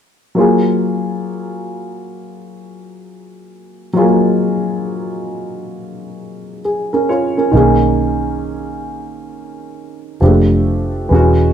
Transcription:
0.35 upright piano F#3 A#3 F4
0.40 upright piano G#4
3.93 upright piano F#3 G#3 F4
3.98 upright piano A#3 G#4
6.65 upright piano G#4
6.93 upright piano C#4 A#4
7.09 upright piano F4 C#5
7.37 upright piano C#4 A#4
7.52 fingered electric bass B1, upright piano D#3 A#3 C#4
7.57 upright piano G#4
10.21 fingered electric bass F1, upright piano F3 G#3 D4 G4
10.28 upright piano A3
11.09 fingered electric bass E1, upright piano E3 G#3 C#4
11.14 upright piano F#4

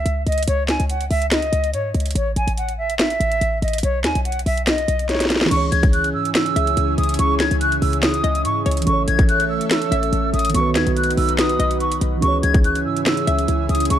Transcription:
Already playing: flute E5
0.06 808-style bass C#2, closed hi-hat
0.26 808-style bass C#2, flute D#5, closed hi-hat
0.32 closed hi-hat
0.38 closed hi-hat
0.43 closed hi-hat
0.48 808-style bass C#2, flute C#5, closed hi-hat
0.68 flute G#5, finger snap, snare, closed hi-hat
0.80 808-style bass C#2, closed hi-hat
0.89 flute F#5, closed hi-hat
1.01 closed hi-hat
1.10 808-style bass C#2, flute E5, open hi-hat
1.22 closed hi-hat
1.31 flute D#5, finger snap, snare, closed hi-hat
1.42 closed hi-hat
1.52 808-style bass C#2, closed hi-hat
1.64 closed hi-hat
1.73 808-style bass G#2, flute C#5, closed hi-hat
1.94 808-style bass C#2, closed hi-hat
2.00 closed hi-hat
2.06 closed hi-hat
2.11 closed hi-hat
2.15 808-style bass A1, flute C#5, closed hi-hat
2.36 808-style bass A1, flute G#5, closed hi-hat
2.47 808-style bass A1, closed hi-hat
2.57 flute F#5, closed hi-hat
2.69 closed hi-hat
2.78 flute E5
2.90 closed hi-hat
2.99 flute E5, finger snap, snare, closed hi-hat
3.10 closed hi-hat
3.20 808-style bass A1, closed hi-hat
3.32 closed hi-hat
3.41 808-style bass A1, closed hi-hat
3.62 808-style bass A1, flute D#5, closed hi-hat
3.68 closed hi-hat
3.73 closed hi-hat
3.78 closed hi-hat
3.83 808-style bass B1, flute C#5, closed hi-hat
4.04 808-style bass D#2, flute G#5, finger snap, snare, closed hi-hat
4.15 808-style bass B1, closed hi-hat
4.25 flute F#5, closed hi-hat
4.32 closed hi-hat
4.39 closed hi-hat
4.46 808-style bass B1, flute E5, open hi-hat
4.57 closed hi-hat
4.67 flute D#5, finger snap, snare, closed hi-hat
4.78 closed hi-hat
4.88 808-style bass B1, closed hi-hat
4.99 closed hi-hat
5.09 flute C#5, snare, closed hi-hat
5.15 snare
5.20 snare, closed hi-hat
5.25 snare
5.30 snare, closed hi-hat
5.36 snare
5.41 snare
5.45 synth keys E3 C#4, snare
5.51 808-style bass C#2, analog synth pad C#3 C#4 E4 G#4, synth keys G#4, flute C#6, closed hi-hat, crash
5.57 synth keys C#5
5.72 808-style bass C#2, flute G#6, closed hi-hat
5.83 kick, closed hi-hat
5.93 flute F#6, closed hi-hat
6.04 closed hi-hat
6.14 808-style bass G#2, flute E6
6.25 closed hi-hat
6.35 flute E6, finger snap, snare, closed hi-hat
6.46 closed hi-hat
6.56 808-style bass C#2, synth pluck E5, closed hi-hat
6.67 closed hi-hat
6.77 808-style bass C#2, closed hi-hat
6.98 808-style bass C#2, flute D#6, closed hi-hat
7.03 closed hi-hat
7.09 closed hi-hat
7.14 closed hi-hat
7.19 808-style bass C#2, flute C#6, closed hi-hat
7.40 flute G#6, finger snap, snare, closed hi-hat
7.51 808-style bass C#2, closed hi-hat
7.61 flute F#6, closed hi-hat
7.72 closed hi-hat
7.82 808-style bass C#2, flute E6, open hi-hat
7.93 closed hi-hat
8.03 flute D#6, finger snap, snare, closed hi-hat
8.14 closed hi-hat
8.24 808-style bass C#2, synth pluck D#5, closed hi-hat
8.35 closed hi-hat
8.45 808-style bass G#2, flute C#6, closed hi-hat
8.66 808-style bass C#2, synth pluck C#5, closed hi-hat
8.71 closed hi-hat
8.77 closed hi-hat
8.82 synth keys E3 C#4, closed hi-hat
8.87 808-style bass A1, analog synth pad A3 A4 C#5 E5, synth keys A4, flute C#6, closed hi-hat
8.93 synth keys C#5
9.08 808-style bass A1, flute G#6, closed hi-hat
9.19 kick, closed hi-hat
9.29 flute F#6, closed hi-hat
9.40 closed hi-hat
9.50 flute E6
9.61 closed hi-hat
9.71 flute E6, finger snap, snare, closed hi-hat
9.82 closed hi-hat
9.89 808-style bass A1, synth keys E3 C#4 A4, synth pluck E5, closed hi-hat
9.95 synth keys C#5
10.03 closed hi-hat
10.12 808-style bass A1, closed hi-hat
10.33 808-style bass A1, flute D#6, closed hi-hat
10.39 closed hi-hat
10.45 closed hi-hat
10.49 synth keys D#3 B3, closed hi-hat
10.54 808-style bass B1, analog synth pad D#4 F#4 B4, synth keys F#4, flute C#6, closed hi-hat
10.61 synth keys B4
10.75 808-style bass D#2, flute G#6, finger snap, snare, closed hi-hat
10.87 808-style bass B1, closed hi-hat
10.96 flute F#6, closed hi-hat
11.04 closed hi-hat
11.10 closed hi-hat
11.17 808-style bass B1, flute E6, open hi-hat
11.29 closed hi-hat
11.39 flute D#6, finger snap, snare, closed hi-hat
11.49 closed hi-hat
11.59 808-style bass B1, synth pluck D#5, closed hi-hat
11.71 closed hi-hat
11.80 flute C#6, closed hi-hat
11.92 closed hi-hat
12.01 808-style bass B1, closed hi-hat
12.17 synth keys E3 C#4
12.22 808-style bass C#2, analog synth pad C#3 C#4 E4 G#4, synth keys G#4, flute C#6, closed hi-hat
12.28 synth keys C#5
12.43 808-style bass C#2, flute G#6, closed hi-hat
12.54 kick, closed hi-hat
12.64 flute F#6, closed hi-hat
12.75 closed hi-hat
12.85 808-style bass G#2, flute E6
12.97 closed hi-hat
13.06 flute E6, finger snap, snare, closed hi-hat
13.17 closed hi-hat
13.27 808-style bass C#2, synth pluck E5, closed hi-hat
13.38 closed hi-hat
13.48 808-style bass C#2, closed hi-hat
13.69 808-style bass C#2, flute D#6, closed hi-hat
13.75 closed hi-hat
13.80 closed hi-hat
13.85 closed hi-hat
13.90 808-style bass C#2, flute C#6, closed hi-hat

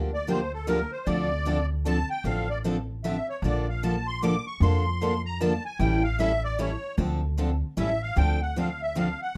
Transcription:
Already playing: upright bass D2
0.14 accordion D5
0.27 steel-string acoustic guitar D3 F3 A#3 D4 G4, accordion C5
0.54 accordion A4
0.67 steel-string acoustic guitar D3 F3 A#3 D4 G4, accordion A#4
0.92 accordion C5
1.06 upright bass D2, steel-string acoustic guitar D3 F3 C4 D4 A4, accordion D5
1.45 steel-string acoustic guitar D3 F3 C4 D4 A4
1.85 steel-string acoustic guitar D3 F3 C4 D4 A4, accordion A5
2.10 accordion G5
2.24 upright bass A1, steel-string acoustic guitar D3 F3 C4 D4 A4, accordion F5
2.50 accordion D5
2.64 steel-string acoustic guitar D3 F3 C4 D4 A4
3.04 steel-string acoustic guitar D3 F3 C4 D4 A4, accordion E5
3.29 accordion C#5
3.42 upright bass A#1, steel-string acoustic guitar D3 F3 A#3 D4 A4, accordion D5
3.69 accordion F5
3.83 steel-string acoustic guitar D3 F3 A#3 D4 A4, accordion A5
4.07 accordion C6
4.22 steel-string acoustic guitar D3 F3 A#3 D4 A4, accordion D6
4.47 accordion C#6
4.60 upright bass F2, steel-string acoustic guitar D3 F3 A#3 D4 A4, accordion C6
5.01 steel-string acoustic guitar D3 F3 A#3 D4 A4
5.26 accordion A#5
5.40 steel-string acoustic guitar D3 F3 A#3 D4 A4, accordion A5
5.65 accordion G#5
5.79 upright bass A1, steel-string acoustic guitar E3 G3 C#4 E4 A4, accordion G5
6.04 accordion F5
6.19 steel-string acoustic guitar E3 G3 C#4 E4 A4, accordion E5
6.44 accordion D5
6.59 steel-string acoustic guitar E3 G3 C#4 E4 A4, accordion C#5
6.97 upright bass D2, steel-string acoustic guitar D3 F3 C4 D4 A4
7.38 steel-string acoustic guitar D3 F3 C4 D4 A4
7.77 upright bass A1, steel-string acoustic guitar E3 G3 C#4 E4 A4, accordion E5
8.02 accordion F5
8.16 upright bass D2, steel-string acoustic guitar D3 F3 C4 D4 A4, accordion G5
8.42 accordion F#5
8.56 steel-string acoustic guitar D3 F3 C4 D4 A4, accordion F5
8.82 accordion E5
8.95 steel-string acoustic guitar D3 F3 C4 D4 A4, accordion F5
9.22 accordion F#5

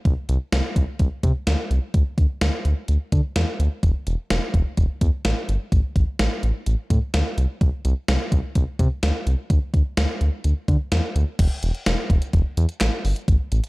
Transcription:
0.05 analog synth bass C2, kick, closed hi-hat
0.29 analog synth bass C2, closed hi-hat
0.52 analog synth bass C2, snare, closed hi-hat
0.76 analog synth bass C2, kick, closed hi-hat
0.99 analog synth bass C2, kick, closed hi-hat
1.23 analog synth bass C3, kick, closed hi-hat
1.47 analog synth bass D2, snare, closed hi-hat
1.70 analog synth bass C2, closed hi-hat
1.94 analog synth bass D2, kick, closed hi-hat
2.18 analog synth bass D2, kick, closed hi-hat
2.41 analog synth bass D2, snare, closed hi-hat
2.65 analog synth bass D2, closed hi-hat
2.88 analog synth bass D2, closed hi-hat
3.12 analog synth bass D3, kick, closed hi-hat
3.36 analog synth bass E2, snare, closed hi-hat
3.59 analog synth bass D2, closed hi-hat
3.83 analog synth bass E1, kick, closed hi-hat
4.07 analog synth bass E1, closed hi-hat
4.30 analog synth bass E1, snare, closed hi-hat
4.54 analog synth bass E1, kick, closed hi-hat
4.77 analog synth bass E1, kick, closed hi-hat
5.01 analog synth bass E2, kick, closed hi-hat
5.25 analog synth bass A1, snare, closed hi-hat
5.49 analog synth bass G1, closed hi-hat
5.72 analog synth bass A1, kick, closed hi-hat
5.96 analog synth bass A1, kick, closed hi-hat
6.19 analog synth bass A1, snare, closed hi-hat
6.43 analog synth bass A1, closed hi-hat
6.66 analog synth bass A1, closed hi-hat
6.90 analog synth bass A2, kick, closed hi-hat
7.14 analog synth bass D2, snare, closed hi-hat
7.38 analog synth bass C2, closed hi-hat
7.61 analog synth bass C2, kick, closed hi-hat
7.85 analog synth bass C2, closed hi-hat
8.08 analog synth bass C2, snare, closed hi-hat
8.32 analog synth bass C2, kick, closed hi-hat
8.55 analog synth bass C2, kick, closed hi-hat
8.79 analog synth bass C3, kick, closed hi-hat
9.03 analog synth bass D2, snare, closed hi-hat
9.26 analog synth bass C2, closed hi-hat
9.50 analog synth bass D2, kick, closed hi-hat
9.74 analog synth bass D2, kick, closed hi-hat
9.97 analog synth bass D2, snare, closed hi-hat
10.21 analog synth bass D2, closed hi-hat
10.44 analog synth bass D2, closed hi-hat
10.68 analog synth bass D3, kick, closed hi-hat
10.92 analog synth bass E2, snare, closed hi-hat
11.15 analog synth bass D2, closed hi-hat
11.39 analog synth bass E1, kick, closed hi-hat, crash
11.63 analog synth bass E1, closed hi-hat
11.75 closed hi-hat
11.86 analog synth bass E1, snare, closed hi-hat
12.10 analog synth bass E1, kick, closed hi-hat
12.22 closed hi-hat
12.33 analog synth bass E1, kick, closed hi-hat
12.57 analog synth bass E2, closed hi-hat
12.69 closed hi-hat
12.81 analog synth bass A1, snare, clap, closed hi-hat
13.05 analog synth bass G1, open hi-hat
13.16 closed hi-hat
13.28 analog synth bass A1, kick, closed hi-hat
13.52 analog synth bass A1, closed hi-hat
13.64 closed hi-hat

